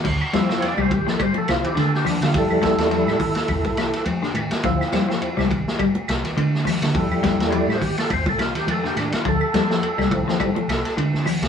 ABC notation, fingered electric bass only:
X:1
M:4/4
L:1/16
Q:"Swing 16ths" 1/4=104
K:Dm
V:1 name="Fingered electric bass" clef=bass
D,, z F,,2 z C,,2 z3 C,, z D,2 z D, | F,, F,, F,, E,,2 A,, z2 E,, C,,2 z F,, z A,, z | D,, z F,,2 z C,,2 z3 C,, z D,2 z D, | F,, F,, F,, E,,2 A,, z2 E,, C,,2 z F,, z A,, z |
D,, z F,,2 z C,,2 z3 C,, z D,2 z C,, |]